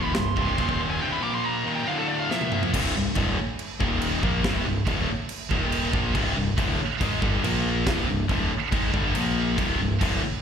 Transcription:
Already playing: D#1 D#2 A#2 D#3
0.03 B5
0.15 C1 C2 G2 C6, snare, china
0.37 C1 C2 G2 C3, kick
0.58 D#1 D#2 A#2 D#3, kick, china
0.69 kick
0.90 G#5
1.01 C2 G2 C3 G5
1.12 B5
1.23 A#2 F3 A#3 D6
1.35 C6
1.45 A#5
1.66 D#2 A#2 D#3
1.75 G5
1.88 D2 A2 D3 F5
1.98 A4
2.08 D5
2.19 F5
2.30 A#2 F3 A#3 E5, snare
2.41 high tom
2.52 mid tom
2.63 floor tom
2.73 C1 C2 G2 C3, kick, crash
2.95 C1 C2 G2
3.15 D1 D2 A2 D3, kick, crash
3.59 crash
3.80 D#1 D#2 A#2 D#3, kick
4.02 crash
4.23 A#1 A#2 F3 A#3, kick
4.44 C1 C2 G2 C3, kick, snare, crash
4.66 C1 C2 G2
4.86 D1 D2 A2 D3, kick, crash
5.29 crash
5.51 D#1 D#2 A#2 D#3, kick
5.72 crash
5.93 A#1 A#2 F3 A#3, kick
6.15 C1 C2 G2 C3, kick, crash
6.36 C1 C2 G2
6.57 D1 D2 A2 D3, kick, crash
7.01 G#1 G#2 D#3 G#3, kick, crash
7.21 G1 G2 D3 G3, kick
7.44 A#1 A#2 F3 A#3, crash
7.87 C1 C2 G2 C3, kick, snare, crash
8.07 C1 C2 G2
8.28 D1 D2 A2 D3, kick, crash
8.71 G#1 G#2 D#3 G#3, kick, crash
8.92 G1 G2 D3 G3, kick
9.15 A#1 A#2 F3 A#3, crash
9.58 C1 C2 G2 C3, kick, crash
9.80 C1 C2 G2
10.01 D1 D2 A2 D3, kick, crash

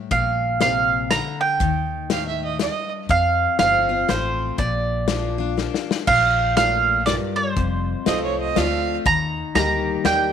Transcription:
0.11 A#1 A#2 F5, kick, closed hi-hat
0.61 C3 F5, snare, closed hi-hat
1.11 D3 A#5, snare, closed hi-hat
1.41 G5
1.60 D#2 D#3, kick, closed hi-hat
2.10 A2 F5, snare, closed hi-hat
2.27 E5
2.44 D#5
2.59 G2 D#5, snare, closed hi-hat
3.09 F2 F5, kick, closed hi-hat
3.59 G1 F3 A3 C4 F4 F5, snare, closed hi-hat
3.89 C4 F4
4.08 A1 F3 A3 C4 F4 C5, snare, closed hi-hat
4.58 A#1 A#2 D5, kick, closed hi-hat
5.08 F3 A#3 D4 F4, snare, closed hi-hat
5.38 D4 F4
5.57 F3 A#3 D4 F4, snare
5.74 snare
5.91 snare
6.07 A#1 A#2 F5, kick, crash
6.57 A2 F4 A#4 D5 F5, snare, closed hi-hat
7.06 G2 F4 A#4 D5, snare, closed hi-hat
7.36 C5
7.56 F1 F2, kick, closed hi-hat
8.06 C2 F3 A3 C4 F4 A4 C5 D#5, snare, closed hi-hat
8.24 C#5
8.40 D#5
8.56 D2 F3 A3 C4 F4 A4 D5 F5, snare, closed hi-hat
9.06 D#2 D#3 A#5, kick, closed hi-hat
9.55 D2 G3 A#3 D#4 G4 A#4 D#5 A#5, snare, closed hi-hat
10.04 D#2 G3 A#3 D#4 G4 A#4 D5 G5, snare, closed hi-hat

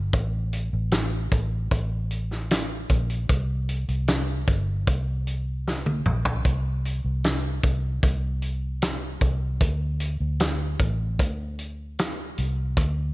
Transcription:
Already playing: G1
0.13 A1, kick, closed hi-hat
0.53 closed hi-hat
0.73 A1
0.91 snare, closed hi-hat
1.32 A1, kick, closed hi-hat
1.71 A1, kick, closed hi-hat
2.11 closed hi-hat
2.31 snare
2.51 snare, closed hi-hat
2.89 A#1, kick, closed hi-hat
3.10 closed hi-hat
3.29 C2, kick, closed hi-hat
3.69 closed hi-hat
3.88 C2, closed hi-hat
4.08 snare, closed hi-hat
4.48 G1, kick, closed hi-hat
4.87 C2, kick, closed hi-hat
5.27 closed hi-hat
5.68 snare
5.86 high tom
6.06 A#1, mid tom
6.25 floor tom
6.45 C2, kick, closed hi-hat
6.85 closed hi-hat
7.04 C2
7.24 snare, closed hi-hat
7.64 C2, kick, closed hi-hat
8.03 C2, kick, closed hi-hat
8.42 closed hi-hat
8.82 snare, closed hi-hat
9.21 C2, kick, closed hi-hat
9.60 D2, kick, closed hi-hat
10.00 closed hi-hat
10.20 D2
10.40 snare, closed hi-hat
10.80 A1, kick, closed hi-hat
11.19 D2, kick, closed hi-hat
11.59 closed hi-hat
11.99 snare, closed hi-hat
12.38 C2, closed hi-hat
12.77 D2, kick, closed hi-hat

